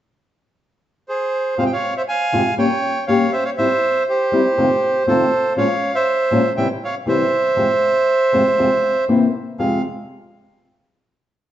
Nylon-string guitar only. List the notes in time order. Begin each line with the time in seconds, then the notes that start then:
1.58 F2 C3 F3 G#3 C4 F4
2.32 F2 C3 F3 G#3 C4 F4
2.57 G3 A#3 C#4 G4
3.08 G3 A#3 C#4 G4
3.58 G3 C4 E4
4.32 G3 C4 E4
4.58 F2 C3 D#3 A3 C4 F4
5.07 F2 C3 D#3 A3 C4 F4
5.56 A#2 F3 G#3 C#4 F4
6.31 A#2 F3 G#3 C#4 F4
6.57 C3 E3 G3 C4 E4
7.06 C3 E3 G3 C4 E4
7.56 F2 C3 F3 G#3 C4 F4
8.32 F2 C3 F3 G#3 C4 F4
8.58 F2 C3 F3 G#3 C4 F4
9.08 C3 E3 A#3 C4 E4
9.58 F2 C3 F3 G#3 C4 F4